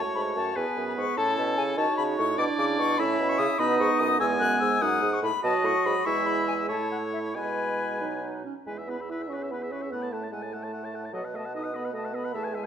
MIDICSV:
0, 0, Header, 1, 6, 480
1, 0, Start_track
1, 0, Key_signature, 4, "major"
1, 0, Tempo, 405680
1, 1386, Time_signature, 6, 3, 24, 8
1, 5697, Tempo, 416089
1, 7617, Tempo, 436364
1, 10497, Tempo, 406229
1, 14712, End_track
2, 0, Start_track
2, 0, Title_t, "Flute"
2, 0, Program_c, 0, 73
2, 175, Note_on_c, 0, 83, 93
2, 246, Note_off_c, 0, 83, 0
2, 424, Note_on_c, 0, 81, 108
2, 673, Note_on_c, 0, 80, 100
2, 691, Note_off_c, 0, 81, 0
2, 1031, Note_off_c, 0, 80, 0
2, 1039, Note_on_c, 0, 83, 85
2, 1090, Note_off_c, 0, 83, 0
2, 1150, Note_on_c, 0, 85, 118
2, 1388, Note_on_c, 0, 81, 123
2, 1405, Note_off_c, 0, 85, 0
2, 1605, Note_off_c, 0, 81, 0
2, 1612, Note_on_c, 0, 81, 106
2, 1683, Note_off_c, 0, 81, 0
2, 1859, Note_on_c, 0, 80, 116
2, 1930, Note_off_c, 0, 80, 0
2, 2095, Note_on_c, 0, 81, 123
2, 2324, Note_off_c, 0, 81, 0
2, 2331, Note_on_c, 0, 83, 114
2, 2402, Note_off_c, 0, 83, 0
2, 2575, Note_on_c, 0, 85, 125
2, 2806, Note_off_c, 0, 85, 0
2, 2813, Note_on_c, 0, 86, 127
2, 2884, Note_off_c, 0, 86, 0
2, 3059, Note_on_c, 0, 86, 123
2, 3130, Note_off_c, 0, 86, 0
2, 3297, Note_on_c, 0, 85, 127
2, 3526, Note_on_c, 0, 83, 115
2, 3543, Note_off_c, 0, 85, 0
2, 3892, Note_on_c, 0, 85, 127
2, 3910, Note_off_c, 0, 83, 0
2, 4002, Note_on_c, 0, 87, 127
2, 4020, Note_off_c, 0, 85, 0
2, 4246, Note_on_c, 0, 83, 127
2, 4263, Note_off_c, 0, 87, 0
2, 4484, Note_off_c, 0, 83, 0
2, 4491, Note_on_c, 0, 85, 127
2, 4724, Note_on_c, 0, 87, 127
2, 4742, Note_off_c, 0, 85, 0
2, 4964, Note_off_c, 0, 87, 0
2, 4971, Note_on_c, 0, 88, 116
2, 5042, Note_off_c, 0, 88, 0
2, 5199, Note_on_c, 0, 90, 127
2, 5428, Note_off_c, 0, 90, 0
2, 5435, Note_on_c, 0, 88, 127
2, 5696, Note_on_c, 0, 87, 127
2, 5713, Note_off_c, 0, 88, 0
2, 6066, Note_on_c, 0, 85, 113
2, 6084, Note_off_c, 0, 87, 0
2, 6169, Note_off_c, 0, 85, 0
2, 6176, Note_on_c, 0, 83, 127
2, 6409, Note_off_c, 0, 83, 0
2, 6419, Note_on_c, 0, 81, 109
2, 6662, Note_on_c, 0, 85, 122
2, 6679, Note_off_c, 0, 81, 0
2, 6900, Note_on_c, 0, 83, 120
2, 6918, Note_off_c, 0, 85, 0
2, 7121, Note_on_c, 0, 85, 126
2, 7139, Note_off_c, 0, 83, 0
2, 7365, Note_on_c, 0, 83, 105
2, 7382, Note_off_c, 0, 85, 0
2, 7607, Note_off_c, 0, 83, 0
2, 7614, Note_on_c, 0, 80, 106
2, 7680, Note_off_c, 0, 80, 0
2, 7854, Note_on_c, 0, 81, 92
2, 8089, Note_off_c, 0, 81, 0
2, 8094, Note_on_c, 0, 78, 86
2, 8160, Note_off_c, 0, 78, 0
2, 8332, Note_on_c, 0, 76, 74
2, 8398, Note_off_c, 0, 76, 0
2, 8576, Note_on_c, 0, 71, 101
2, 9758, Note_off_c, 0, 71, 0
2, 10019, Note_on_c, 0, 80, 64
2, 10085, Note_off_c, 0, 80, 0
2, 10260, Note_on_c, 0, 83, 46
2, 10497, Note_on_c, 0, 88, 52
2, 10515, Note_off_c, 0, 83, 0
2, 10723, Note_off_c, 0, 88, 0
2, 10730, Note_on_c, 0, 85, 53
2, 10801, Note_off_c, 0, 85, 0
2, 10982, Note_on_c, 0, 83, 46
2, 11053, Note_off_c, 0, 83, 0
2, 11226, Note_on_c, 0, 85, 48
2, 11459, Note_off_c, 0, 85, 0
2, 11467, Note_on_c, 0, 83, 65
2, 11696, Note_off_c, 0, 83, 0
2, 11704, Note_on_c, 0, 81, 57
2, 11957, Note_on_c, 0, 80, 53
2, 11975, Note_off_c, 0, 81, 0
2, 12199, Note_on_c, 0, 81, 55
2, 12217, Note_off_c, 0, 80, 0
2, 12915, Note_off_c, 0, 81, 0
2, 12922, Note_on_c, 0, 78, 68
2, 12993, Note_off_c, 0, 78, 0
2, 13171, Note_on_c, 0, 81, 59
2, 13396, Note_off_c, 0, 81, 0
2, 13408, Note_on_c, 0, 87, 64
2, 13641, Note_on_c, 0, 83, 60
2, 13659, Note_off_c, 0, 87, 0
2, 13870, Note_off_c, 0, 83, 0
2, 13882, Note_on_c, 0, 81, 60
2, 14104, Note_off_c, 0, 81, 0
2, 14114, Note_on_c, 0, 83, 68
2, 14345, Note_on_c, 0, 81, 84
2, 14363, Note_off_c, 0, 83, 0
2, 14576, Note_off_c, 0, 81, 0
2, 14583, Note_on_c, 0, 80, 67
2, 14712, Note_off_c, 0, 80, 0
2, 14712, End_track
3, 0, Start_track
3, 0, Title_t, "Oboe"
3, 0, Program_c, 1, 68
3, 0, Note_on_c, 1, 73, 96
3, 661, Note_on_c, 1, 71, 75
3, 679, Note_off_c, 1, 73, 0
3, 1379, Note_off_c, 1, 71, 0
3, 1386, Note_on_c, 1, 69, 100
3, 2088, Note_off_c, 1, 69, 0
3, 2106, Note_on_c, 1, 73, 94
3, 2824, Note_on_c, 1, 74, 114
3, 2841, Note_off_c, 1, 73, 0
3, 3541, Note_on_c, 1, 76, 111
3, 3559, Note_off_c, 1, 74, 0
3, 4246, Note_off_c, 1, 76, 0
3, 4253, Note_on_c, 1, 75, 116
3, 4957, Note_off_c, 1, 75, 0
3, 4968, Note_on_c, 1, 80, 123
3, 5695, Note_on_c, 1, 78, 108
3, 5713, Note_off_c, 1, 80, 0
3, 6161, Note_off_c, 1, 78, 0
3, 6412, Note_on_c, 1, 75, 107
3, 7084, Note_off_c, 1, 75, 0
3, 7136, Note_on_c, 1, 76, 109
3, 7841, Note_off_c, 1, 76, 0
3, 7846, Note_on_c, 1, 73, 89
3, 8578, Note_on_c, 1, 80, 82
3, 8594, Note_off_c, 1, 73, 0
3, 9661, Note_off_c, 1, 80, 0
3, 10019, Note_on_c, 1, 71, 43
3, 10147, Note_on_c, 1, 76, 39
3, 10164, Note_off_c, 1, 71, 0
3, 10272, Note_on_c, 1, 71, 36
3, 10289, Note_off_c, 1, 76, 0
3, 10402, Note_on_c, 1, 76, 34
3, 10419, Note_off_c, 1, 71, 0
3, 10508, Note_off_c, 1, 76, 0
3, 10513, Note_on_c, 1, 71, 41
3, 10646, Note_on_c, 1, 76, 35
3, 10663, Note_off_c, 1, 71, 0
3, 10776, Note_on_c, 1, 71, 43
3, 10794, Note_off_c, 1, 76, 0
3, 10890, Note_on_c, 1, 76, 33
3, 10908, Note_off_c, 1, 71, 0
3, 10999, Note_off_c, 1, 76, 0
3, 11006, Note_on_c, 1, 71, 36
3, 11120, Note_on_c, 1, 76, 39
3, 11138, Note_off_c, 1, 71, 0
3, 11231, Note_on_c, 1, 71, 40
3, 11249, Note_off_c, 1, 76, 0
3, 11350, Note_on_c, 1, 76, 38
3, 11367, Note_off_c, 1, 71, 0
3, 11463, Note_off_c, 1, 76, 0
3, 11470, Note_on_c, 1, 78, 47
3, 11592, Note_on_c, 1, 81, 41
3, 11609, Note_off_c, 1, 78, 0
3, 11714, Note_on_c, 1, 78, 42
3, 11732, Note_off_c, 1, 81, 0
3, 11839, Note_on_c, 1, 81, 40
3, 11857, Note_off_c, 1, 78, 0
3, 11937, Note_off_c, 1, 81, 0
3, 11944, Note_on_c, 1, 78, 46
3, 12060, Note_on_c, 1, 81, 40
3, 12078, Note_off_c, 1, 78, 0
3, 12188, Note_on_c, 1, 78, 45
3, 12206, Note_off_c, 1, 81, 0
3, 12311, Note_on_c, 1, 81, 36
3, 12329, Note_off_c, 1, 78, 0
3, 12417, Note_off_c, 1, 81, 0
3, 12424, Note_on_c, 1, 78, 44
3, 12563, Note_on_c, 1, 81, 42
3, 12581, Note_off_c, 1, 78, 0
3, 12684, Note_on_c, 1, 78, 44
3, 12702, Note_off_c, 1, 81, 0
3, 12808, Note_on_c, 1, 81, 43
3, 12826, Note_off_c, 1, 78, 0
3, 12899, Note_off_c, 1, 81, 0
3, 12906, Note_on_c, 1, 75, 52
3, 13039, Note_on_c, 1, 78, 44
3, 13057, Note_off_c, 1, 75, 0
3, 13170, Note_on_c, 1, 75, 40
3, 13188, Note_off_c, 1, 78, 0
3, 13280, Note_on_c, 1, 78, 45
3, 13298, Note_off_c, 1, 75, 0
3, 13390, Note_off_c, 1, 78, 0
3, 13397, Note_on_c, 1, 75, 49
3, 13500, Note_on_c, 1, 78, 45
3, 13518, Note_off_c, 1, 75, 0
3, 13624, Note_on_c, 1, 75, 50
3, 13642, Note_off_c, 1, 78, 0
3, 13749, Note_on_c, 1, 78, 38
3, 13767, Note_off_c, 1, 75, 0
3, 13857, Note_off_c, 1, 78, 0
3, 13864, Note_on_c, 1, 75, 47
3, 13986, Note_on_c, 1, 78, 44
3, 14003, Note_off_c, 1, 75, 0
3, 14103, Note_on_c, 1, 75, 51
3, 14121, Note_off_c, 1, 78, 0
3, 14220, Note_on_c, 1, 78, 50
3, 14237, Note_off_c, 1, 75, 0
3, 14322, Note_off_c, 1, 78, 0
3, 14329, Note_on_c, 1, 76, 56
3, 14446, Note_on_c, 1, 80, 49
3, 14464, Note_off_c, 1, 76, 0
3, 14567, Note_on_c, 1, 76, 49
3, 14585, Note_off_c, 1, 80, 0
3, 14704, Note_off_c, 1, 76, 0
3, 14712, End_track
4, 0, Start_track
4, 0, Title_t, "Clarinet"
4, 0, Program_c, 2, 71
4, 0, Note_on_c, 2, 66, 68
4, 669, Note_on_c, 2, 68, 73
4, 686, Note_off_c, 2, 66, 0
4, 1380, Note_off_c, 2, 68, 0
4, 1387, Note_on_c, 2, 64, 83
4, 2104, Note_on_c, 2, 66, 81
4, 2122, Note_off_c, 2, 64, 0
4, 2812, Note_off_c, 2, 66, 0
4, 2819, Note_on_c, 2, 64, 86
4, 3524, Note_off_c, 2, 64, 0
4, 3536, Note_on_c, 2, 64, 104
4, 4253, Note_on_c, 2, 63, 90
4, 4271, Note_off_c, 2, 64, 0
4, 4967, Note_on_c, 2, 59, 100
4, 4984, Note_off_c, 2, 63, 0
4, 5682, Note_off_c, 2, 59, 0
4, 5689, Note_on_c, 2, 63, 90
4, 6149, Note_off_c, 2, 63, 0
4, 6410, Note_on_c, 2, 66, 94
4, 7083, Note_off_c, 2, 66, 0
4, 7135, Note_on_c, 2, 64, 96
4, 7811, Note_off_c, 2, 64, 0
4, 7854, Note_on_c, 2, 64, 70
4, 8567, Note_off_c, 2, 64, 0
4, 8583, Note_on_c, 2, 64, 61
4, 9288, Note_off_c, 2, 64, 0
4, 9295, Note_on_c, 2, 63, 74
4, 9521, Note_off_c, 2, 63, 0
4, 9528, Note_on_c, 2, 63, 67
4, 9773, Note_off_c, 2, 63, 0
4, 9787, Note_on_c, 2, 61, 58
4, 9895, Note_off_c, 2, 61, 0
4, 10026, Note_on_c, 2, 64, 40
4, 10146, Note_on_c, 2, 68, 36
4, 10162, Note_off_c, 2, 64, 0
4, 10267, Note_on_c, 2, 64, 37
4, 10284, Note_off_c, 2, 68, 0
4, 10384, Note_on_c, 2, 68, 33
4, 10400, Note_off_c, 2, 64, 0
4, 10488, Note_off_c, 2, 68, 0
4, 10495, Note_on_c, 2, 64, 39
4, 10617, Note_on_c, 2, 68, 32
4, 10635, Note_off_c, 2, 64, 0
4, 10740, Note_on_c, 2, 64, 42
4, 10758, Note_off_c, 2, 68, 0
4, 10853, Note_on_c, 2, 68, 39
4, 10871, Note_off_c, 2, 64, 0
4, 10970, Note_off_c, 2, 68, 0
4, 10977, Note_on_c, 2, 64, 38
4, 11100, Note_on_c, 2, 68, 40
4, 11118, Note_off_c, 2, 64, 0
4, 11227, Note_on_c, 2, 64, 41
4, 11245, Note_off_c, 2, 68, 0
4, 11336, Note_on_c, 2, 68, 38
4, 11353, Note_off_c, 2, 64, 0
4, 11451, Note_off_c, 2, 68, 0
4, 11458, Note_on_c, 2, 69, 43
4, 11590, Note_on_c, 2, 73, 38
4, 11607, Note_off_c, 2, 69, 0
4, 11707, Note_on_c, 2, 69, 41
4, 11725, Note_off_c, 2, 73, 0
4, 11822, Note_on_c, 2, 73, 40
4, 11840, Note_off_c, 2, 69, 0
4, 11933, Note_off_c, 2, 73, 0
4, 11940, Note_on_c, 2, 69, 42
4, 12068, Note_on_c, 2, 73, 39
4, 12085, Note_off_c, 2, 69, 0
4, 12184, Note_on_c, 2, 69, 49
4, 12202, Note_off_c, 2, 73, 0
4, 12318, Note_on_c, 2, 73, 39
4, 12336, Note_off_c, 2, 69, 0
4, 12437, Note_off_c, 2, 73, 0
4, 12443, Note_on_c, 2, 69, 41
4, 12553, Note_on_c, 2, 73, 45
4, 12570, Note_off_c, 2, 69, 0
4, 12674, Note_on_c, 2, 69, 39
4, 12691, Note_off_c, 2, 73, 0
4, 12791, Note_on_c, 2, 73, 41
4, 12809, Note_off_c, 2, 69, 0
4, 12891, Note_off_c, 2, 73, 0
4, 12898, Note_on_c, 2, 69, 51
4, 13020, Note_on_c, 2, 71, 45
4, 13037, Note_off_c, 2, 69, 0
4, 13154, Note_on_c, 2, 69, 43
4, 13172, Note_off_c, 2, 71, 0
4, 13270, Note_on_c, 2, 71, 42
4, 13288, Note_off_c, 2, 69, 0
4, 13381, Note_off_c, 2, 71, 0
4, 13388, Note_on_c, 2, 69, 44
4, 13502, Note_on_c, 2, 71, 44
4, 13520, Note_off_c, 2, 69, 0
4, 13622, Note_on_c, 2, 69, 48
4, 13639, Note_off_c, 2, 71, 0
4, 13743, Note_on_c, 2, 71, 48
4, 13761, Note_off_c, 2, 69, 0
4, 13850, Note_off_c, 2, 71, 0
4, 13857, Note_on_c, 2, 69, 43
4, 13978, Note_on_c, 2, 71, 50
4, 13996, Note_off_c, 2, 69, 0
4, 14104, Note_on_c, 2, 69, 52
4, 14121, Note_off_c, 2, 71, 0
4, 14218, Note_on_c, 2, 71, 50
4, 14236, Note_off_c, 2, 69, 0
4, 14329, Note_off_c, 2, 71, 0
4, 14336, Note_on_c, 2, 68, 55
4, 14458, Note_on_c, 2, 71, 50
4, 14476, Note_off_c, 2, 68, 0
4, 14587, Note_on_c, 2, 68, 52
4, 14605, Note_off_c, 2, 71, 0
4, 14711, Note_off_c, 2, 68, 0
4, 14712, End_track
5, 0, Start_track
5, 0, Title_t, "French horn"
5, 0, Program_c, 3, 60
5, 0, Note_on_c, 3, 57, 70
5, 650, Note_off_c, 3, 57, 0
5, 667, Note_on_c, 3, 59, 76
5, 1387, Note_on_c, 3, 61, 88
5, 1405, Note_off_c, 3, 59, 0
5, 2094, Note_on_c, 3, 63, 86
5, 2112, Note_off_c, 3, 61, 0
5, 2795, Note_off_c, 3, 63, 0
5, 2802, Note_on_c, 3, 62, 100
5, 3543, Note_on_c, 3, 61, 97
5, 3560, Note_off_c, 3, 62, 0
5, 4242, Note_off_c, 3, 61, 0
5, 4249, Note_on_c, 3, 59, 99
5, 4972, Note_on_c, 3, 56, 95
5, 4990, Note_off_c, 3, 59, 0
5, 6091, Note_off_c, 3, 56, 0
5, 6408, Note_on_c, 3, 54, 88
5, 7082, Note_off_c, 3, 54, 0
5, 7130, Note_on_c, 3, 56, 90
5, 7850, Note_on_c, 3, 57, 76
5, 7867, Note_off_c, 3, 56, 0
5, 8578, Note_off_c, 3, 57, 0
5, 8584, Note_on_c, 3, 56, 63
5, 9302, Note_on_c, 3, 54, 63
5, 9318, Note_off_c, 3, 56, 0
5, 9785, Note_off_c, 3, 54, 0
5, 10018, Note_on_c, 3, 56, 60
5, 10127, Note_off_c, 3, 56, 0
5, 10249, Note_on_c, 3, 59, 58
5, 10357, Note_off_c, 3, 59, 0
5, 10496, Note_on_c, 3, 64, 67
5, 10730, Note_on_c, 3, 61, 76
5, 10748, Note_off_c, 3, 64, 0
5, 10986, Note_on_c, 3, 59, 60
5, 11003, Note_off_c, 3, 61, 0
5, 11221, Note_on_c, 3, 61, 64
5, 11238, Note_off_c, 3, 59, 0
5, 11455, Note_on_c, 3, 59, 73
5, 11473, Note_off_c, 3, 61, 0
5, 11700, Note_on_c, 3, 57, 67
5, 11718, Note_off_c, 3, 59, 0
5, 11929, Note_off_c, 3, 57, 0
5, 11936, Note_on_c, 3, 56, 63
5, 12049, Note_off_c, 3, 56, 0
5, 12176, Note_on_c, 3, 57, 75
5, 12893, Note_off_c, 3, 57, 0
5, 12899, Note_on_c, 3, 54, 74
5, 13010, Note_off_c, 3, 54, 0
5, 13143, Note_on_c, 3, 57, 69
5, 13252, Note_off_c, 3, 57, 0
5, 13392, Note_on_c, 3, 63, 76
5, 13617, Note_off_c, 3, 63, 0
5, 13625, Note_on_c, 3, 59, 76
5, 13839, Note_off_c, 3, 59, 0
5, 13846, Note_on_c, 3, 57, 76
5, 14085, Note_on_c, 3, 59, 74
5, 14103, Note_off_c, 3, 57, 0
5, 14326, Note_on_c, 3, 57, 90
5, 14343, Note_off_c, 3, 59, 0
5, 14559, Note_on_c, 3, 56, 77
5, 14577, Note_off_c, 3, 57, 0
5, 14712, Note_off_c, 3, 56, 0
5, 14712, End_track
6, 0, Start_track
6, 0, Title_t, "Bassoon"
6, 0, Program_c, 4, 70
6, 181, Note_on_c, 4, 44, 77
6, 416, Note_off_c, 4, 44, 0
6, 421, Note_on_c, 4, 42, 80
6, 658, Note_off_c, 4, 42, 0
6, 664, Note_on_c, 4, 40, 76
6, 773, Note_off_c, 4, 40, 0
6, 906, Note_on_c, 4, 42, 77
6, 1141, Note_off_c, 4, 42, 0
6, 1152, Note_on_c, 4, 44, 83
6, 1259, Note_off_c, 4, 44, 0
6, 1392, Note_on_c, 4, 45, 83
6, 1623, Note_off_c, 4, 45, 0
6, 1635, Note_on_c, 4, 47, 88
6, 1859, Note_off_c, 4, 47, 0
6, 1866, Note_on_c, 4, 49, 80
6, 2092, Note_off_c, 4, 49, 0
6, 2099, Note_on_c, 4, 51, 90
6, 2207, Note_off_c, 4, 51, 0
6, 2341, Note_on_c, 4, 49, 83
6, 2574, Note_off_c, 4, 49, 0
6, 2585, Note_on_c, 4, 45, 94
6, 2810, Note_off_c, 4, 45, 0
6, 2817, Note_on_c, 4, 47, 88
6, 2924, Note_off_c, 4, 47, 0
6, 3054, Note_on_c, 4, 49, 93
6, 3295, Note_on_c, 4, 47, 88
6, 3313, Note_off_c, 4, 49, 0
6, 3536, Note_off_c, 4, 47, 0
6, 3541, Note_on_c, 4, 45, 89
6, 3769, Note_off_c, 4, 45, 0
6, 3776, Note_on_c, 4, 47, 87
6, 4004, Note_off_c, 4, 47, 0
6, 4012, Note_on_c, 4, 49, 95
6, 4119, Note_off_c, 4, 49, 0
6, 4247, Note_on_c, 4, 47, 106
6, 4482, Note_off_c, 4, 47, 0
6, 4491, Note_on_c, 4, 44, 105
6, 4599, Note_off_c, 4, 44, 0
6, 4729, Note_on_c, 4, 42, 96
6, 4963, Note_off_c, 4, 42, 0
6, 4970, Note_on_c, 4, 40, 104
6, 5197, Note_off_c, 4, 40, 0
6, 5204, Note_on_c, 4, 42, 83
6, 5444, Note_off_c, 4, 42, 0
6, 5452, Note_on_c, 4, 44, 99
6, 5684, Note_off_c, 4, 44, 0
6, 5691, Note_on_c, 4, 42, 96
6, 5927, Note_off_c, 4, 42, 0
6, 5935, Note_on_c, 4, 44, 97
6, 6163, Note_off_c, 4, 44, 0
6, 6170, Note_on_c, 4, 45, 90
6, 6279, Note_off_c, 4, 45, 0
6, 6413, Note_on_c, 4, 47, 92
6, 6521, Note_off_c, 4, 47, 0
6, 6646, Note_on_c, 4, 45, 86
6, 6755, Note_off_c, 4, 45, 0
6, 6892, Note_on_c, 4, 44, 83
6, 6999, Note_off_c, 4, 44, 0
6, 7133, Note_on_c, 4, 40, 87
6, 7853, Note_on_c, 4, 45, 75
6, 7870, Note_off_c, 4, 40, 0
6, 8579, Note_on_c, 4, 47, 65
6, 8595, Note_off_c, 4, 45, 0
6, 9783, Note_off_c, 4, 47, 0
6, 10029, Note_on_c, 4, 40, 44
6, 11424, Note_off_c, 4, 40, 0
6, 11476, Note_on_c, 4, 45, 53
6, 12891, Note_off_c, 4, 45, 0
6, 12923, Note_on_c, 4, 47, 56
6, 14313, Note_off_c, 4, 47, 0
6, 14336, Note_on_c, 4, 40, 59
6, 14712, Note_off_c, 4, 40, 0
6, 14712, End_track
0, 0, End_of_file